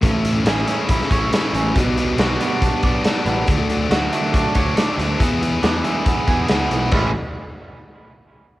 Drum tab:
CC |----------------|----------------|----------------|----------------|
HH |x-x-x-x-x-x-x-x-|x-x-x-x-x-x-x-x-|x-x-x-x-x-x-x-x-|x-x-x-x-x-x-x-x-|
SD |----o----o--o---|----o-------o---|----o-------o---|----o-------o---|
BD |o-------o-o-----|o-------o-o-----|o-------o-o-----|o-------o-o-----|

CC |x---------------|
HH |----------------|
SD |----------------|
BD |o---------------|